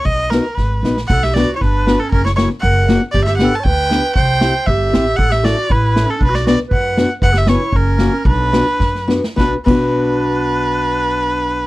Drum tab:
CC |--------|x-------|--------|--------|
SD |--o-o-oo|-oo-o-o-|-oo---o-|-oo---o-|
BD |o---o---|o---o---|o---o---|o---o---|

CC |--------|--------|--------|--------|
SD |--o---o-|-oo---o-|-oo---o-|-oo---o-|
BD |o---o---|o---o---|o---o---|o---o---|

CC |--------|--x-----|--------|
SD |--o-oooo|o-------|--------|
BD |o---o---|o-o-----|--------|